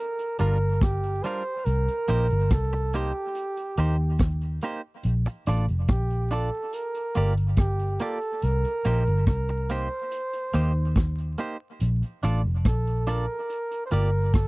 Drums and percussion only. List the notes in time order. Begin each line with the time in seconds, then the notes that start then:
0.19 closed hi-hat
0.39 closed hi-hat
0.81 kick, cross-stick, closed hi-hat
1.04 closed hi-hat
1.24 closed hi-hat
1.66 closed hi-hat
1.88 closed hi-hat
2.08 closed hi-hat
2.30 closed hi-hat
2.50 kick, cross-stick, closed hi-hat
2.73 closed hi-hat
2.93 closed hi-hat
3.35 closed hi-hat
3.57 closed hi-hat
3.77 closed hi-hat
4.19 kick, cross-stick, closed hi-hat
4.41 closed hi-hat
4.61 closed hi-hat
5.03 closed hi-hat
5.26 closed hi-hat
5.46 closed hi-hat
5.68 closed hi-hat
5.88 kick, cross-stick, closed hi-hat
6.10 closed hi-hat
6.31 cross-stick, closed hi-hat
6.73 closed hi-hat
6.94 closed hi-hat
7.15 closed hi-hat
7.37 closed hi-hat
7.57 kick, cross-stick, closed hi-hat
7.79 closed hi-hat
7.99 closed hi-hat
8.21 closed hi-hat
8.42 closed hi-hat
8.64 closed hi-hat
8.85 closed hi-hat
9.07 closed hi-hat
9.27 kick, cross-stick, closed hi-hat
9.49 closed hi-hat
9.69 closed hi-hat
10.12 closed hi-hat
10.33 closed hi-hat
10.54 closed hi-hat
10.96 kick, cross-stick, closed hi-hat
11.18 closed hi-hat
11.38 closed hi-hat
11.80 closed hi-hat
12.03 closed hi-hat
12.23 closed hi-hat
12.65 kick, cross-stick, closed hi-hat
12.87 closed hi-hat
13.08 cross-stick, closed hi-hat
13.50 closed hi-hat
13.71 closed hi-hat
13.92 closed hi-hat
14.34 kick, cross-stick, closed hi-hat